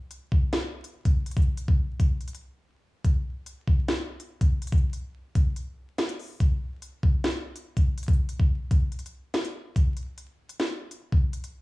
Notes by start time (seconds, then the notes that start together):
0.11 closed hi-hat
0.32 kick
0.53 snare, closed hi-hat
0.84 closed hi-hat
1.05 kick, closed hi-hat
1.26 closed hi-hat
1.31 closed hi-hat
1.37 kick, closed hi-hat
1.42 closed hi-hat
1.57 closed hi-hat
1.68 kick
2.00 kick, closed hi-hat
2.21 closed hi-hat
2.28 closed hi-hat
2.35 closed hi-hat
3.05 kick, closed hi-hat
3.46 closed hi-hat
3.68 kick
3.88 snare, closed hi-hat
4.20 closed hi-hat
4.41 kick, closed hi-hat
4.62 closed hi-hat
4.67 closed hi-hat
4.72 kick, closed hi-hat
4.78 closed hi-hat
4.93 closed hi-hat
5.35 kick, closed hi-hat
5.56 closed hi-hat
5.98 snare, closed hi-hat
6.09 closed hi-hat
6.19 open hi-hat
6.40 kick, closed hi-hat
6.82 closed hi-hat
7.03 kick
7.24 snare, closed hi-hat
7.56 closed hi-hat
7.77 kick, closed hi-hat
7.98 closed hi-hat
8.03 closed hi-hat
8.08 kick, closed hi-hat
8.13 closed hi-hat
8.29 closed hi-hat
8.40 kick
8.71 kick, closed hi-hat
8.92 closed hi-hat
8.99 closed hi-hat
9.06 closed hi-hat
9.34 snare, closed hi-hat
9.45 closed hi-hat
9.76 kick, closed hi-hat
9.97 closed hi-hat
10.18 closed hi-hat
10.49 closed hi-hat
10.60 snare, closed hi-hat
10.91 closed hi-hat
11.12 kick
11.33 closed hi-hat
11.44 closed hi-hat